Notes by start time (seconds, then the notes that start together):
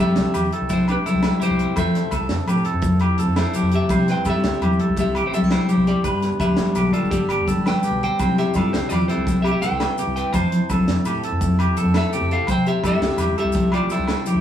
Already playing: C3 G3 C4 G4 E5 G5 C6
0.00 E4 A4 E5
0.08 G2
0.16 C2, snare, closed hi-hat, low conga
0.25 maracas
0.34 E2 G2 E4 G4, closed hi-hat, high conga, low conga, low agogo, maracas
0.45 low conga
0.52 C4 A4, closed hi-hat
0.61 C2
0.69 E4 C5, muted steel-string acoustic guitar stroke, kick, closed hi-hat, high conga, maracas
0.88 C4 D4 G4 B4, closed hi-hat, low agogo
0.97 A1, low conga
1.06 G3 E4 A4 C5, closed hi-hat, high conga, low conga, maracas
1.14 C2
1.23 snare, closed hi-hat, low agogo
1.27 C4
1.40 G2 E4 G4 C5, closed hi-hat, high conga, low conga, maracas
1.45 E4
1.50 C2
1.59 C4, closed hi-hat
1.69 low conga
1.76 F2 F3 A4 C5 E5 A5, kick, closed hi-hat, high conga, low agogo, maracas
1.84 F3, maracas
1.95 E4, snare, closed hi-hat
2.05 low conga
2.11 C2 C4 A4, kick, closed hi-hat, low agogo, maracas
2.20 C2
2.29 F2, muted steel-string acoustic guitar stroke, snare, closed hi-hat, low conga
2.40 maracas
2.47 A2 C3 G4 A4, closed hi-hat, high conga, low conga, low agogo, maracas
2.56 low conga
2.65 E4 A4, closed hi-hat
2.74 F2, low conga
2.82 F3, kick, closed hi-hat, high conga, maracas
2.92 low conga
2.99 E4 G4, closed hi-hat, low agogo
3.09 E2
3.18 C4 A4, closed hi-hat, high conga, low conga, maracas
3.27 F2
3.36 E4 C5, snare, closed hi-hat, low agogo
3.53 C3 G4 A4, closed hi-hat, high conga, low conga, maracas
3.62 F2
3.71 E4 G4, closed hi-hat
3.75 E5
3.81 low conga
3.89 C2 C3 G3 C4 E4 G4 C5 G5 C6, kick, closed hi-hat, high conga, low agogo, maracas
3.98 C3, maracas
4.08 C4 B4 G5, snare, closed hi-hat
4.17 low conga
4.25 G2 G3 E4 G4 A4, kick, closed hi-hat, high conga, low agogo, maracas
4.30 E5
4.35 G2
4.44 C2 C4, snare, closed hi-hat, low conga
4.54 maracas
4.61 E2 G2 E4 G4, closed hi-hat, high conga, low conga, low agogo
4.70 low conga, maracas
4.79 C4 A4, closed hi-hat
4.89 C2, low conga
4.97 C3 G4 E5, kick, closed hi-hat, high conga, maracas
5.07 low conga
5.15 C4 G4, closed hi-hat, low agogo
5.23 A1 E4, low conga
5.27 C5
5.33 G3 D4 G4 A4 E5, closed hi-hat, high conga, low conga, maracas
5.42 C2 E4
5.51 C4 E4 C5, snare, closed hi-hat, low agogo
5.69 G2 E4 G4, closed hi-hat, high conga, low conga, maracas
5.77 C2
5.87 C4 G4 D5, closed hi-hat
5.96 low conga
6.04 G1 G2 B4 A5 B5, kick, closed hi-hat, high conga, low agogo, maracas
6.12 G2
6.22 B3, snare, closed hi-hat, low conga, maracas
6.32 low conga, maracas
6.39 D2 G3 D4 G4 B4 E5, kick, closed hi-hat, high conga, low agogo, maracas
6.49 D2
6.57 G1 B3, snare, closed hi-hat, low conga
6.66 maracas
6.75 B1 D3 G4, closed hi-hat, high conga, low agogo, maracas
6.79 D4
6.86 low conga
6.93 B3 F4 A4 D5, closed hi-hat, maracas
7.03 G1, low conga, maracas
7.11 G2 G4 D5, kick, closed hi-hat, high conga, maracas
7.21 low conga
7.29 B3 G4, closed hi-hat, low conga, low agogo
7.39 E1
7.47 G3 D4 A4, kick, closed hi-hat, high conga, maracas
7.57 G1
7.65 B3 B4 G5, snare, closed hi-hat, high conga, low agogo
7.83 D3 D4 G4, closed hi-hat, low conga, maracas
7.91 B1
8.01 B3 C5 G5, closed hi-hat, low conga, maracas
8.19 C2 C3 G3 C4 E4 G4 C5 E5, kick, closed hi-hat, high conga, low agogo, maracas
8.29 C3
8.38 C4 G4 E5, snare, closed hi-hat
8.47 low conga
8.54 G2 G3 E4 F4 A4 D5, kick, closed hi-hat, high conga, low agogo, maracas
8.64 G2
8.73 C2 C4 E4 C5, snare, closed hi-hat, low conga
8.81 maracas
8.89 E2 G2 E4 F4 G4 D5, closed hi-hat, high conga, low agogo, maracas
9.01 low conga, maracas
9.08 C4 E4 A4 C5, closed hi-hat
9.17 C2, low conga
9.27 C3, kick, closed hi-hat, high conga, maracas
9.37 low conga
9.42 C4 G4 E5, closed hi-hat, low agogo
9.51 A1 G4 E5
9.61 G3 E4 A4 B4 G5, closed hi-hat, high conga, low conga, maracas
9.71 C2
9.80 C4, snare, closed hi-hat, low agogo
9.98 G2 E4 G4, closed hi-hat, low conga, maracas
10.07 C2
10.16 B4 G5, closed hi-hat
10.26 low conga
10.33 F2 F3 C5 A5, kick, closed hi-hat, high conga, low agogo, maracas
10.44 F3
10.52 E4, closed hi-hat
10.61 low conga
10.70 C2 C4 A4, kick, closed hi-hat, high conga, low agogo, maracas
10.78 C2
10.87 F2 E4, snare, closed hi-hat, low conga
10.96 maracas
11.05 A2 C3 G4 A4, closed hi-hat, low conga, low agogo, maracas
11.15 low conga, maracas
11.23 E4 A4, closed hi-hat
11.32 F2, low conga
11.41 F3, kick, closed hi-hat, high conga, maracas
11.52 low conga
11.59 E4 G4, closed hi-hat, low agogo
11.68 E2, low conga
11.77 C4 A4, closed hi-hat, high conga, low conga, maracas
11.85 F2
11.94 E4 A4 E5, snare, closed hi-hat, low agogo
12.13 C3 G4 A4, closed hi-hat, low conga, maracas
12.21 F2
12.31 E4 A4 F5, closed hi-hat
12.41 low conga
12.47 C2 C3 C5 E5 G5 C6, kick, closed hi-hat, high conga, low agogo, maracas
12.51 G5
12.57 C3
12.66 C4 G4 E5, closed hi-hat
12.77 low conga
12.83 G2 G3 E4 G4 A4 E5, kick, closed hi-hat, high conga, low agogo, maracas
12.92 G2
12.99 C2 C4, snare, closed hi-hat, low conga
13.11 maracas
13.17 E2 G2 E4 G4, closed hi-hat, high conga, low conga, low agogo, maracas
13.29 low conga
13.38 C4 G4 A4 E5, closed hi-hat
13.44 C2, low conga
13.52 C3, kick, closed hi-hat, high conga, maracas
13.64 low conga
13.72 F4 G4 D5, closed hi-hat, low agogo
13.81 A1, low conga
13.90 G3 E4 A4, closed hi-hat, high conga, maracas
13.94 C5
13.99 C2
14.08 C4, snare, closed hi-hat, low agogo
14.26 G2 E4 G4, closed hi-hat, high conga, low conga, maracas
14.35 D2